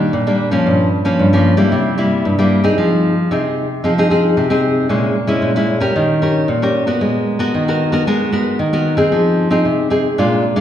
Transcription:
Already playing: D#3 G3 A#3 D4
0.13 A#2
0.27 G3 A#3 D4
0.51 F3 A#3 C#4
0.67 G2
1.05 F3 A#3 C#4
1.19 G2
1.33 F3 A#3 C#4
1.57 G3 A#3 E4
1.72 C3
1.98 G3 A#3 E4
2.25 G2
2.39 G3 A#3 E4
2.64 C4 D#4 G#4
2.78 F3
3.31 C3 C4 D#4 G#4
3.84 F3 C4 D#4 G#4
3.98 C4 D#4 G#4
4.10 C4 D#4 G#4
4.37 C3
4.50 C4 D#4 G#4
4.89 A#2 G#3 C#4 E4
5.27 G#3 C#4 E4
5.42 A#2
5.56 G#3 C#4 E4
5.80 C#4 G4 A#4
5.96 D#3
6.22 C#4 G4 A#4
6.48 A#2
6.62 C#4 G4 A#4
6.87 B3 F#4 A#4
7.01 G#3
7.39 B3 F#4 A#4
7.54 D#3
7.68 B3 F#4 A#4
7.92 B3 F#4 A#4
8.07 G#3 B3 F#4 A#4
8.32 B3 F#4 A#4
8.59 D#3
8.73 B3 F#4 A#4
8.97 C4 D#4 G#4
9.12 F3
9.50 C4 D#4 G#4
9.65 C3
9.90 C4 D#4 G#4
10.18 A#2 G#3 D4 F4
10.56 G#3 D4 F4

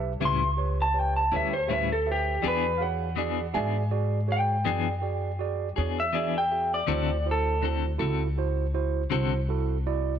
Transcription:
Already playing: B1 G4 B4 E5
0.20 C#2 A2 G3 C#4 E4 G4 B4 E5
0.25 C6
0.57 G4 B4 C#5
0.82 A5
0.94 G4 B4 C#5
0.99 G5
1.16 A5
1.32 D2 G3 C#4 E4 G4 B4 C#5
1.36 E5
1.53 C5
1.67 A2 G3 C#4 E4 G4 B4 E5
1.73 E5
1.92 A4
2.06 G4 B4 E5
2.12 G4
2.42 E2 E3 B3 D4 F#4 G#4 D5
2.48 B4
2.77 F#4 G#4 C#5 F5
2.82 F#5
3.16 E3 B3 D4 F#4 G#4 D5
3.54 G#2 B3 D4 F#4 G#4 D5 E5 G#5
3.91 F#4 G#4 D5
4.28 F#4 G#4 C#5
4.32 G5
4.65 F#2 E3 B3 D4 F#4 G#4 D5
5.02 F#4 G#4 D5
5.39 F#4 G#4 D5
5.76 E2 B3 D4 F#4 G#4 C#5
6.00 E5
6.13 E3 B3 D4 F#4 G#4 D5
6.38 G5
6.51 F#4 G#4 E5
6.74 D5
6.87 D2 D3 C4 E4 F#4 A4 C5
7.26 E4 F#4 C5
7.31 A4
7.62 D3 C4 E4 F#4 A4 C5
7.98 C#2 C4 E4 F#4 A4
8.38 E4 F#4 C5
8.74 E4 F#4 C5
9.10 C2 D3 C4 E4 F#4 A4 C5
9.49 E4 F#4 A4
9.87 E4 F#4 D5

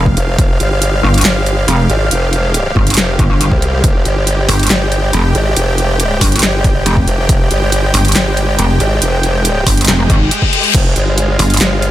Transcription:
Already playing: F1 G#3 G4 F5
0.06 kick
0.17 F1, closed hi-hat
0.39 F1, kick, closed hi-hat
0.60 G1, closed hi-hat
0.82 closed hi-hat
1.03 G1
1.14 closed hi-hat
1.18 closed hi-hat
1.21 snare, clap, closed hi-hat
1.25 G1, closed hi-hat
1.46 closed hi-hat
1.68 F1, closed hi-hat
1.90 G#1, closed hi-hat
2.11 F1, closed hi-hat
2.33 closed hi-hat
2.54 closed hi-hat
2.76 G1, kick
2.87 closed hi-hat
2.90 closed hi-hat
2.94 F1, snare, clap, closed hi-hat
2.98 closed hi-hat
3.19 G1, kick, closed hi-hat
3.41 closed hi-hat
3.52 C2, kick
3.62 closed hi-hat
3.84 F1 G5, kick, closed hi-hat
4.05 G1, closed hi-hat
4.27 closed hi-hat
4.49 G1, open hi-hat
4.59 closed hi-hat
4.63 closed hi-hat
4.67 snare, clap, closed hi-hat
4.70 G1, closed hi-hat
4.92 closed hi-hat
5.13 F1, closed hi-hat
5.35 G#1, closed hi-hat
5.57 F1, closed hi-hat
5.78 closed hi-hat
6.00 closed hi-hat
6.21 G1, kick, open hi-hat
6.32 closed hi-hat
6.36 closed hi-hat
6.39 snare, clap, closed hi-hat
6.43 G1, closed hi-hat
6.64 kick, closed hi-hat
6.86 F1, closed hi-hat
6.97 kick
7.08 F1, closed hi-hat
7.29 F1, kick, closed hi-hat
7.51 G1, closed hi-hat
7.72 closed hi-hat
7.94 G1, open hi-hat
8.05 closed hi-hat
8.08 closed hi-hat
8.12 snare, clap, closed hi-hat
8.15 G1, closed hi-hat
8.37 closed hi-hat
8.59 F1, closed hi-hat
8.80 G#1, closed hi-hat
9.02 F1, closed hi-hat
9.23 closed hi-hat
9.45 closed hi-hat
9.67 G1, kick, open hi-hat
9.77 closed hi-hat
9.81 closed hi-hat
9.85 F1, snare, clap, closed hi-hat
9.88 closed hi-hat, reverse cymbal
10.10 G#1, kick, closed hi-hat
10.31 closed hi-hat
10.42 kick
10.53 closed hi-hat
10.64 closed hi-hat
10.74 F1 F4 F5, kick, closed hi-hat, crash
10.96 G1, closed hi-hat
11.18 closed hi-hat
11.39 G1, open hi-hat
11.50 closed hi-hat
11.54 closed hi-hat
11.57 snare, clap, closed hi-hat
11.61 G1, closed hi-hat
11.82 closed hi-hat

